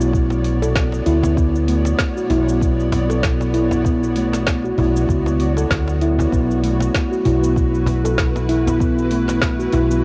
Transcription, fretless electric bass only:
0.00 1.00 B1 medium
1.07 1.93 D2 medium
2.30 4.71 B1 medium
4.78 5.08 B1 medium
5.70 6.26 D2 medium
6.32 6.88 B1 medium
7.25 9.66 B1 medium
9.73 10.04 B1 medium

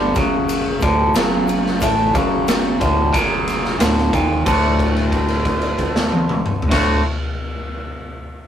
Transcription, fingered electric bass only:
0.00 0.14 G1 loud
0.15 0.78 F#1 loud
0.81 1.13 D1 medium
1.14 1.77 F#1 loud
1.81 2.12 A1 medium
2.15 2.77 F#1 medium
2.80 3.12 D1 loud
3.14 3.76 F#1 medium
3.80 4.11 D1 medium
4.13 4.44 D#1 medium
4.46 6.59 D1 medium
6.71 6.99 D1 loud

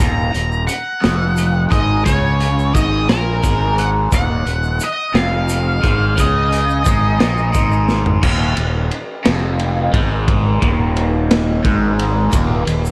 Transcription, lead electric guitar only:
0.00 0.64 A#5 loud
0.67 1.74 F#5 loud
1.71 2.04 D#5 medium
2.05 2.74 C#5 medium
2.75 3.07 D#5 medium
3.09 3.74 A#4 medium
3.79 3.88 F#5 medium
4.15 4.84 F#5 loud
4.84 5.18 D#5 medium
5.16 6.21 F5 medium
6.20 7.86 D#5 medium

